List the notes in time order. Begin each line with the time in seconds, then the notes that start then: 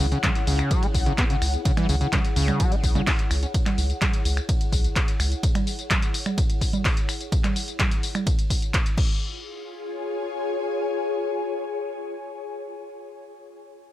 Already playing: E4 G#4 C#5 F#5
0.00 C#2, tambourine
0.12 C#3, closed hi-hat, tambourine
0.23 C#3, kick, clap, closed hi-hat, ride, tambourine, low conga
0.35 closed hi-hat, tambourine
0.47 C#2 C#3, open hi-hat, tambourine
0.59 finger snap, closed hi-hat, tambourine
0.71 F#3, kick, closed hi-hat, ride, tambourine
0.83 G#3, closed hi-hat, tambourine
0.94 B1, kick, open hi-hat, tambourine
1.06 C#3, closed hi-hat, tambourine
1.18 B3, kick, clap, closed hi-hat, ride, tambourine
1.30 C#3, closed hi-hat, tambourine
1.42 C#2, finger snap, open hi-hat, tambourine
1.54 closed hi-hat, tambourine
1.65 C#3, kick, closed hi-hat, ride, tambourine
1.77 E3, finger snap, closed hi-hat, tambourine, low conga
1.89 C#2 C#3, open hi-hat, tambourine
2.01 C#3, closed hi-hat, tambourine
2.13 C#3, kick, clap, closed hi-hat, ride, tambourine, low conga
2.25 closed hi-hat, tambourine
2.36 C#2 C#3, open hi-hat, tambourine
2.48 finger snap, tambourine, low conga
2.60 F#3, kick, closed hi-hat, ride, tambourine
2.72 G#3, closed hi-hat, tambourine
2.83 B1, kick, open hi-hat, tambourine
2.95 C#3, closed hi-hat, tambourine, low conga
3.07 C#4, kick, clap, open hi-hat, ride, tambourine
3.19 closed hi-hat, tambourine
3.31 C#2, finger snap, open hi-hat, tambourine
3.43 closed hi-hat, tambourine
3.54 kick, closed hi-hat, ride, tambourine
3.66 finger snap, clap, closed hi-hat, tambourine, low conga
3.78 C#2, open hi-hat, tambourine
3.90 closed hi-hat, tambourine
4.02 kick, clap, closed hi-hat, ride, tambourine, low conga
4.14 closed hi-hat, tambourine
4.25 C#2, open hi-hat, tambourine
4.37 finger snap, closed hi-hat, tambourine
4.49 kick, closed hi-hat, ride, tambourine
4.61 closed hi-hat, tambourine
4.72 B1, kick, open hi-hat, tambourine
4.84 closed hi-hat, tambourine
4.96 kick, clap, closed hi-hat, ride, tambourine
5.08 closed hi-hat, tambourine
5.20 C#2, finger snap, open hi-hat, tambourine
5.32 closed hi-hat, tambourine
5.43 kick, closed hi-hat, ride, tambourine
5.55 finger snap, closed hi-hat, tambourine, low conga
5.67 open hi-hat, tambourine
5.79 closed hi-hat, tambourine
5.90 kick, clap, closed hi-hat, ride, tambourine, low conga
6.02 closed hi-hat, tambourine
6.14 open hi-hat, tambourine
6.26 finger snap, closed hi-hat, tambourine, low conga
6.38 kick, closed hi-hat, ride, tambourine
6.50 closed hi-hat, tambourine
6.61 kick, open hi-hat, tambourine
6.73 closed hi-hat, tambourine, low conga
6.85 kick, clap, open hi-hat, ride, tambourine
6.97 closed hi-hat, tambourine
7.09 finger snap, open hi-hat, tambourine
7.21 closed hi-hat, tambourine
7.32 kick, closed hi-hat, ride, tambourine
7.44 finger snap, clap, closed hi-hat, tambourine, low conga
7.56 open hi-hat, tambourine
7.68 closed hi-hat, tambourine
7.79 kick, clap, closed hi-hat, ride, tambourine, low conga
7.91 closed hi-hat, tambourine
8.03 open hi-hat, tambourine
8.15 finger snap, closed hi-hat, tambourine, low conga
8.27 kick, closed hi-hat, ride, tambourine
8.39 closed hi-hat, tambourine
8.50 kick, open hi-hat, tambourine
8.62 closed hi-hat, tambourine
8.74 kick, clap, closed hi-hat, ride, tambourine
8.86 closed hi-hat, tambourine
8.98 F4, kick, crash
9.05 G#4
9.35 C#5
9.43 G#5